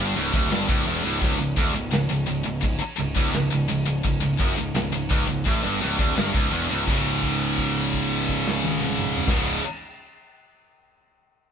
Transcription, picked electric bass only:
Already playing: G1
0.16 C#1
0.34 D1
0.51 G1
0.69 C#1
0.87 E1
1.05 C#1
1.22 C#1
1.39 C#1
1.57 D1
1.74 C#1
1.93 C#1
2.11 C#1
2.28 C#1
2.46 C#1
2.63 C#1
2.82 muted picked electric bass stroke
2.99 C#1
3.16 C#1
3.35 C#1
3.53 C#1
3.69 C#1
3.87 C#1
4.04 C#1
4.23 C#1
4.40 F#1
4.58 C#1
4.76 C#1
4.94 C#1
5.11 C#1
5.30 C#1
5.46 A1
5.65 G1
5.83 C#1
5.99 D1
6.18 G1
6.35 C#1
6.53 E1
6.71 C#1
6.87 C#1
9.28 C#1

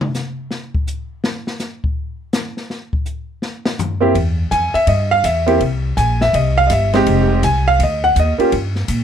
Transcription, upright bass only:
4.15 E2
4.51 F2
4.74 muted upright bass stroke
4.87 G2
5.24 E2
5.60 C2
5.97 A#1
6.33 C2
6.70 G1
7.07 F1
7.43 C2
7.79 D2
8.16 D#2
8.39 muted upright bass stroke
8.52 G2
8.88 A#2

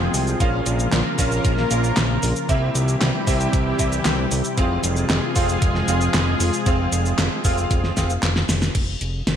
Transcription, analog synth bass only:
0.14 C2
0.40 A#1
0.66 A#1
0.93 A#1
1.19 A#1
1.45 A#1
1.71 A#1
1.97 A#1
2.23 A#1
2.49 C2
2.75 C2
3.01 C2
3.27 C2
3.53 C2
3.79 C2
4.06 C2
4.32 C2
4.58 F1
4.84 F1
5.10 F1
5.36 F1
5.62 F1
5.88 F1
6.14 F1
6.40 F1
6.66 F1
6.92 F1
7.19 F1
7.45 F1
7.71 F1
7.97 F1
8.23 F1
8.49 F1
8.75 F1
9.01 F1
9.27 F1

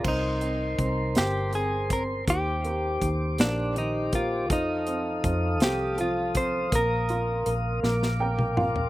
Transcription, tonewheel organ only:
0.04 A#4 C5 C6
2.28 G4 D6
4.50 A4 F5 D#6
6.73 A#4
7.84 D6

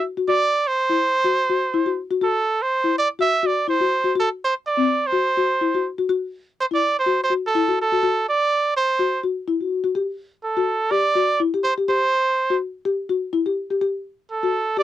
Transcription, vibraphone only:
0.17 F#4
0.28 F#4
0.90 E4
1.24 F#4
1.49 F#4
1.74 E4
1.86 F#4
2.11 F#4
2.21 F#4
2.84 E4
3.19 F#4
3.43 F#4
3.68 E4
3.81 F#4
4.04 F#4
4.15 F#4
4.77 C4
5.12 F#4
5.37 F#4
5.61 E4
5.74 F#4
5.98 F#4
6.09 F#4
6.71 E4
7.06 F#4
7.30 F#4
7.55 E4
7.68 F#4
7.92 F#4
8.03 F#4
8.99 F#4
9.23 F#4
9.48 E4
9.60 F#4
9.84 F#4
9.95 G4
10.57 F#4
10.91 G4
11.15 F#4
11.40 E4
11.54 G4
11.78 G4
11.88 G4
12.50 F#4
12.85 G4
13.09 F#4
13.33 E4
13.46 G4
13.71 G4
13.81 G4
14.43 F#4
14.77 G4

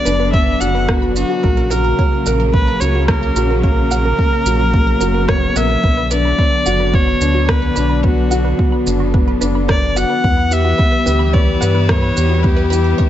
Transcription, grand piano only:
Already playing: B3 D4 F#4
0.06 D4
0.34 B3
0.61 F#4
0.89 B3
1.16 D4
1.44 A#3
1.71 F#4
1.99 A#3
2.26 A#4
2.54 A#3
2.81 F#4
3.09 A#3
3.36 F#4
3.64 A#3
3.92 A#4
4.19 A#3
4.46 F#4
4.74 A#3
5.02 F#4
5.29 A#3
5.56 A#4
5.84 B3
6.11 D4
6.39 B3
6.66 F#4
6.94 B3
7.21 D4
7.49 B3
7.76 D4
8.03 B3
8.31 F#4
8.59 B3
8.86 D4
9.14 B3
9.41 D4
9.68 B3
9.96 F#4
10.24 B3
10.51 G4
10.79 B3
11.06 G4
11.34 B3
11.61 B4
11.88 B3
12.16 G4
12.44 B3
12.71 G4
12.99 B3

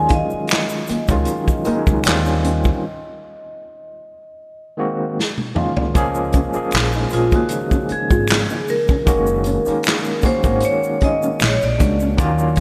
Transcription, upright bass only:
Already playing: D#2
0.33 muted upright bass stroke
0.90 muted upright bass stroke
1.09 C#2
1.67 muted upright bass stroke
1.87 C#2
2.06 D#2
5.96 C#2
6.56 muted upright bass stroke
6.74 A#1
7.13 A#1
7.91 muted upright bass stroke
8.11 G#1
9.07 F#1
9.67 muted upright bass stroke
10.24 muted upright bass stroke
10.45 G#1
11.41 A#1
11.63 A#1
11.81 C#2
12.19 D#2

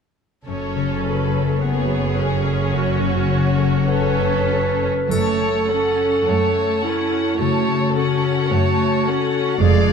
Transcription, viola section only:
0.48 C#4
1.63 B3
2.16 C#4
3.88 C#4
5.11 A3
5.70 C#4
6.27 A3
6.84 C#4
7.39 A3
7.96 C#4
8.51 A3
9.06 C#4
9.60 G#3

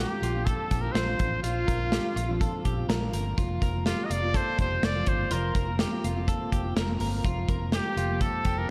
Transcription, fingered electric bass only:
0.22 A#1
0.71 A#1
0.94 A#1
1.20 A1
1.43 A#1
1.68 A#1
2.16 A#1
2.65 A#1
2.88 A#1
3.13 G1
3.38 F1
3.62 F1
4.10 F1
4.59 F1
4.82 F1
5.07 G1
5.31 F1
5.55 F1
6.04 F1
6.52 F1
6.76 F1
7.00 G1
7.24 F1
7.49 F1
7.97 F1
8.45 F1

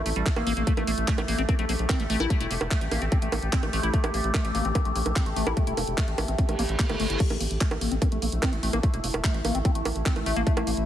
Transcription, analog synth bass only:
0.06 A1
0.16 A1
0.36 A1
0.47 A1
0.57 A1
0.77 A1
0.87 A1
0.98 A1
1.18 A1
1.28 A1
1.38 A1
1.59 A#1
1.69 A#1
1.79 A#1
2.00 A1
2.10 A1
2.20 A1
2.41 E1
2.51 E1
2.61 E1
2.81 A1
2.91 A1
3.02 A1
3.22 A1
3.32 A1
3.43 A1
3.63 A1
3.73 A1
3.83 A1
4.04 A1
4.14 A1
4.24 A1
4.45 A1
4.55 A1
4.65 A1
4.85 A#1
4.96 A#1
5.06 A#1
5.26 A1
5.36 A1
5.47 A1
5.67 E1
5.77 E1
5.87 E1
6.08 A1
6.18 A1
6.28 A1
6.49 A1
6.59 A1
6.69 A1
6.89 G1
7.00 G1
7.10 G1
7.30 A1
7.41 A1
7.51 A1
7.71 A1
7.81 A1
7.92 A1
8.12 A#1
8.22 A#1
8.32 A#1
8.53 A1
8.63 A1
8.73 A1
8.94 E1
9.04 E1
9.14 E1
9.34 A1
9.45 A1
9.55 A1
9.75 A1
9.85 A1
9.96 A1
10.16 A1
10.26 A1
10.36 A1
10.57 A1
10.67 A1
10.77 A1

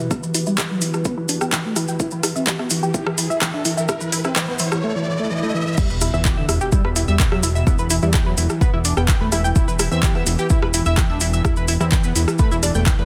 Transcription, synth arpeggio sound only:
0.11 E4
0.23 B4
0.34 E4
0.47 E4
0.58 G5
0.70 B4
0.82 E4
1.05 B4
1.18 E4
1.29 D4
1.41 G5
1.53 G5
1.65 B4
1.76 E4
1.88 G5
2.00 E4
2.12 B4
2.23 E4
2.36 E5
2.47 G4
2.59 E5
2.71 E4
2.83 G4
2.94 E4
3.06 B4
3.18 E4
3.30 E5
3.41 G5
3.54 E5
3.65 E4
3.77 E5
3.89 E4
4.01 B4
4.12 E4
4.25 E4
4.36 G5
4.48 B4
4.60 E4
5.78 E4 E5
5.90 B4 B5
6.01 E4 E5
6.14 E5 E6
6.25 G4 G5
6.37 E5 E6
6.49 E4 E5
6.61 G4 G5
6.72 E4 E5
6.85 B4 B5
6.96 E4 E5
7.08 E5 E6
7.20 G5 G6
7.32 E5 E6
7.43 E4 E5
7.55 E5 E6
7.67 E4 E5
7.79 B4 B5
7.90 E4 E5
8.03 E4 E5
8.14 G5 G6
8.26 B4 B5
8.38 E4 E5
8.61 B4 B5
8.73 E4 E5
8.85 D4 D5
8.97 G5 G6
9.08 G5 G6
9.21 B4 B5
9.32 E4 E5
9.44 G5 G6
9.56 E4 E5
9.68 B4 B5
9.79 E4 E5
9.91 E5 E6
10.03 G4 G5
10.15 E5 E6
10.27 E4 E5
10.39 G4 G5
10.50 E4 E5
10.62 B4 B5
10.74 E4 E5
10.86 E5 E6
10.98 G5 G6
11.10 E5 E6
11.21 E4 E5
11.33 E5 E6
11.45 E4 E5
11.57 B4 B5
11.68 E4 E5
11.81 E4 E5
11.92 G5 G6
12.04 B4 B5
12.16 E4 E5
12.39 B4 B5
12.52 E4 E5
12.63 D4 D5
12.75 G5 G6
12.87 G5 G6
12.99 B4 B5

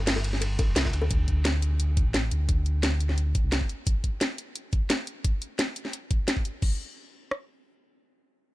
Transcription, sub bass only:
Already playing: G1
0.68 F1
0.76 C2
0.94 D2
1.11 D2
2.06 A1
2.31 D2
3.44 C2

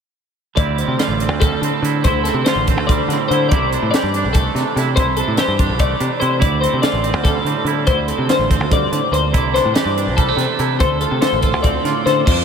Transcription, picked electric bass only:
0.57 D2
0.88 C3
1.08 A1
1.29 D2
1.61 D3
1.82 D3
2.05 D2
2.34 C3
2.56 A1
2.77 D2
3.08 D3
3.31 D3
3.52 C2
3.82 A2
4.03 G2
4.24 C2
4.55 C3
4.76 C3
4.97 C2
5.28 A2
5.48 G2
5.70 C2
6.00 C3
6.22 C3
6.41 D2
6.73 C3
6.93 A1
7.14 D2
7.44 D3
7.64 D3
7.87 D2
8.18 C3
8.39 A1
8.60 D2
8.92 D3
9.12 D2
9.35 C2
9.65 A2
9.85 G2
10.07 C2
10.37 C3
10.59 C3
10.80 D2
11.11 C3
11.32 A1
11.53 D2
11.84 D3
12.06 D3
12.27 F2

